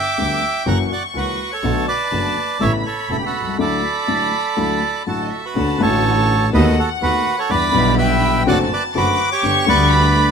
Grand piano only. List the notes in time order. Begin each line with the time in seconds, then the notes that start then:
0.18 D2 D3 G3 B3 G4
0.66 F#2 E3 F#3 A#3 C#4 F#4
1.14 C#2 C#3 E3 A#3 C#4 F#4
1.63 B1 B2 D3 A3 B3 F#4
2.12 F#1 F#2 D3 A3 B3 F#4
2.60 A1 A2 C#3 A3 B3 E4
3.09 E1 E2 C#3 A3 B3 E4
3.41 B1
3.47 C2
3.53 C#2
3.58 D2 D3 F#3 A3 E4
4.08 A1 A2 D3 F#3 A3 E4
4.57 D2 D3 F#3 A3 E4
5.06 A1 A2 D3 F#3 A3 E4
5.56 D2 D3 A3 C#4 F#4
5.78 A1 A2 D3 A3 C#4
5.82 F#4
6.53 D#2 D#3 A3 B3 F#4
7.01 D#2 D#3 A3 B3 F#4
7.49 E2 D3 E3 G3 B3 E4
7.72 B1 B2 D3 G3 B3
7.76 E4
8.46 F#2 D3 F#3 A3 C4 F#4
8.95 F#2 D3 F#3 A3 C4 F#4
9.43 G1 G2 D3 G3 B3 G4
9.66 D2 D3 G3 B3 G4